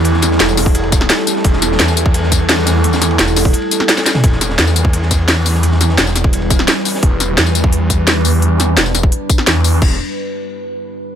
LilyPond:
<<
  \new Staff \with { instrumentName = "Ambient pad" } { \time 4/4 \key e \minor \tempo 4 = 172 << { <g a'>1~ | <g a'>1~ | <g a'>1 | <g b'>1~ |
<g b'>1~ | <g b'>1~ | <g b'>1 | r1 | } \\ { e'1~ | e'1~ | e'1 | e'1~ |
e'1 | d'1~ | d'1 | r1 | } >> }
  \new Staff \with { instrumentName = "Detuned saw bass" } { \clef bass \time 4/4 \key e \minor e,4 e,,8 e,,8 e,,4 r4 | e,,4 e,2.~ | e,4 e,,8 e,,8 r2 | e,,4 e,2.~ |
e,4 e,,8 e,,8 e,,4 r4 | e,,4 e,2.~ | e,4 e,,8 e,,8 r4 e,4 | e,,8 r2. r8 | }
  \new DrumStaff \with { instrumentName = "Drums" } \drummode { \time 4/4 <hh cymr>16 sn16 <hh cymr sn tamb>16 sn16 <hh cymr sn>16 tamb16 <hho cymr sn tamb>16 bd16 <hh cymr>16 cymr16 <hh bd cymr sn tamb>16 sn16 <hh cymr sn>16 sn16 <hh cymr sn tamb>16 sn16 | <hh bd cymr>16 sn16 <hh cymr sn tamb>16 sn16 <hh cymr sn>16 <sn tamb>16 <hh cymr tamb>16 bd16 <hh cymr>16 sn16 <hh bd cymr sn tamb>8 <hh hho sn>8 <hh cymr sn tamb>8 | <hh cymr>16 <cymr sn tamb>16 <hh sn tamb>16 cymr16 <hh cymr sn>16 tamb16 <hho cymr sn tamb>16 bd16 <hh cymr>16 cymr16 <hh cymr sn tamb>16 sn16 <hh cymr sn>16 <cymr sn tamb>16 <hh cymr sn tamb>16 <cymr sn toml>16 | <hh bd cymr>16 sn16 <hh cymr sn tamb>16 sn16 <hh cymr sn>16 <sn tamb>16 <hh cymr tamb>16 bd16 <hh cymr>16 sn16 <hh bd cymr sn tamb>8 <hh hho sn>8 <hho cymr sn tamb>16 sn16 |
<hh cymr>16 sn16 <hh cymr sn tamb>16 sn16 <hh cymr sn>16 tamb16 <hh cymr sn tamb>16 bd16 <hh cymr>16 cymr16 <hh bd cymr sn tamb>16 sn16 <hh cymr sn>16 sn16 <hho cymr sn tamb>16 sn16 | <hh bd>8 <hh sn tamb>8 <hh sn>16 tamb16 <hh tamb>16 bd16 hh8 <hh bd tamb>8 <hh sn>8 <hho tamb>8 | hh8 <hh sn tamb>8 <hh sn>16 tamb16 <hh sn tamb>16 bd16 hh8 <hh bd tamb>16 sn16 <hh sn>8 <hho tamb>8 | <cymc bd>4 r4 r4 r4 | }
>>